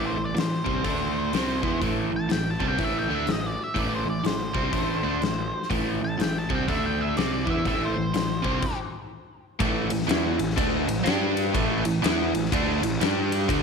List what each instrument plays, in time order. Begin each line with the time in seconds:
Already playing: picked electric bass A1, overdriven electric guitar A2 E3 A3
0.06 lead electric guitar C5
0.17 picked electric bass A1, overdriven electric guitar A2 E3
0.25 lead electric guitar D5
0.35 picked electric bass A1, overdriven electric guitar A2 E3, snare, open hi-hat
0.39 lead electric guitar C5
0.65 picked electric bass C2, overdriven electric guitar C3 G3 C4, kick
0.84 picked electric bass D2, overdriven electric guitar D3 A3 D4, kick, open hi-hat
1.33 picked electric bass C2, overdriven electric guitar C3 G3 C4, snare, open hi-hat
1.62 picked electric bass E2, overdriven electric guitar E3 B3 E4, kick
1.81 picked electric bass A1, overdriven electric guitar A2 E3 A3, kick, open hi-hat
2.12 picked electric bass A1, overdriven electric guitar A2 E3
2.16 lead electric guitar A5
2.29 picked electric bass A1, overdriven electric guitar A2 E3, lead electric guitar G5, snare, open hi-hat
2.50 lead electric guitar A5
2.60 picked electric bass C2, overdriven electric guitar C3 G3 C4, kick
2.68 lead electric guitar G5
2.78 picked electric bass A1, overdriven electric guitar A2 E3 A3, kick, open hi-hat
2.84 lead electric guitar E5
2.99 lead electric guitar G5
3.09 picked electric bass D2, overdriven electric guitar D3 A3 D4
3.15 lead electric guitar E5
3.27 picked electric bass A1, overdriven electric guitar A2 E3, snare, open hi-hat
3.32 lead electric guitar D#5
3.46 lead electric guitar D5
3.64 lead electric guitar E5
3.75 picked electric bass A1, overdriven electric guitar A2 E3 A3, kick, open hi-hat
3.79 lead electric guitar D5
3.95 lead electric guitar C5
4.06 picked electric bass A1, overdriven electric guitar A2 E3
4.10 lead electric guitar D5
4.24 picked electric bass A1, overdriven electric guitar A2 E3, lead electric guitar C5, snare, open hi-hat
4.55 picked electric bass C2, overdriven electric guitar C3 G3 C4, kick
4.73 picked electric bass A1, overdriven electric guitar A2 E3 A3, kick, open hi-hat
5.04 picked electric bass D2, overdriven electric guitar D3 A3 D4
5.21 picked electric bass A1, overdriven electric guitar A2 E3, snare, open hi-hat
5.63 snare
5.70 picked electric bass A1, overdriven electric guitar A2 E3 A3, kick, open hi-hat
6.00 picked electric bass A1, overdriven electric guitar A2 E3
6.04 lead electric guitar A5
6.18 picked electric bass A1, overdriven electric guitar A2 E3, lead electric guitar G5, snare, open hi-hat
6.38 lead electric guitar A5
6.49 picked electric bass C2, overdriven electric guitar C3 G3 C4, kick
6.55 lead electric guitar G5
6.67 picked electric bass D2, overdriven electric guitar D3 A3 D4, lead electric guitar E5, kick, open hi-hat
6.86 lead electric guitar G5
7.01 lead electric guitar E5
7.17 picked electric bass C2, overdriven electric guitar C3 G3 C4, lead electric guitar D5, snare, open hi-hat
7.33 lead electric guitar D5
7.46 picked electric bass E2, overdriven electric guitar E3 B3 E4, kick
7.50 lead electric guitar E5
7.65 picked electric bass A1, overdriven electric guitar A2 E3 A3, lead electric guitar E5, kick, open hi-hat
7.85 lead electric guitar C5
7.96 picked electric bass A1, overdriven electric guitar A2 E3
8.14 picked electric bass A1, overdriven electric guitar A2 E3, snare, open hi-hat
8.43 picked electric bass C2, overdriven electric guitar C3 G3 C4, kick
8.62 kick, crash
9.59 picked electric bass A1, overdriven electric guitar A2 E3 A3, kick, ride
9.90 picked electric bass A1, overdriven electric guitar A2 E3, ride
10.02 snare
10.07 picked electric bass E2, overdriven electric guitar E3 B3 E4, ride
10.11 snare
10.38 picked electric bass A1, overdriven electric guitar A2 E3, ride
10.50 snare
10.56 picked electric bass D2, overdriven electric guitar D3 A3 D4, kick, ride
10.87 picked electric bass A1, overdriven electric guitar A2 E3, ride
11.03 picked electric bass G2, overdriven electric guitar G3 D4 G4, ride
11.07 snare
11.37 ride
11.53 picked electric bass A1, overdriven electric guitar A2 E3 A3, kick, ride
11.85 picked electric bass A1, overdriven electric guitar A2 E3, ride
12.02 picked electric bass E2, overdriven electric guitar E3 B3 E4, snare, ride
12.33 picked electric bass A1, overdriven electric guitar A2 E3, ride
12.45 snare
12.52 picked electric bass D2, overdriven electric guitar D3 A3 D4, kick, ride
12.82 picked electric bass A1, overdriven electric guitar A2 E3, ride
13.01 picked electric bass G2, overdriven electric guitar G3 D4 G4, snare, ride
13.32 ride
13.48 picked electric bass D2, overdriven electric guitar D3 A3 D4, kick, ride